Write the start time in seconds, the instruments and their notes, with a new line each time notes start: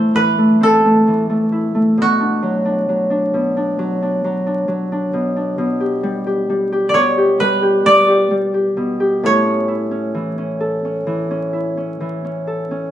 Already playing: harp A2 E3 A3 C4 E4, koto C5
0.15 harp E3, koto B4
0.39 harp A3
0.61 harp C4, koto A4
0.85 harp A3
1.07 harp E3
1.30 harp A3
1.52 harp E4
1.75 harp A3
1.97 harp B2
2.02 koto F#4
2.20 harp D4
2.42 harp F#3
2.65 harp D4
2.89 harp F#3
3.10 harp D4
3.34 harp B2
3.57 harp D4
3.79 harp F#3
4.02 harp D4
4.24 harp F#3
4.47 harp D4
4.68 harp F#3
4.92 harp D4
5.13 harp B2
5.36 harp D4
5.58 harp B2
5.80 harp G4
6.03 harp G3
6.27 harp G4
6.50 harp G3
6.72 harp G4
6.89 koto D5
6.94 harp B2, koto C#5
7.18 harp G4
7.40 harp G3, koto B4
7.63 harp G4
7.86 harp G3, koto D5
8.08 harp G4
8.31 harp G3
8.54 harp G4
8.77 harp B2
9.00 harp G4
9.23 harp A2, koto C#5
9.46 harp C#4
9.68 harp E4
9.91 harp C#4
10.15 harp E3
10.38 harp C#4
10.61 harp A4
10.85 harp C#4
11.07 harp E3
11.31 harp C#4
11.53 harp E4
11.77 harp C#4
12.01 harp E3
12.25 harp C#4
12.47 harp A4
12.71 harp C#4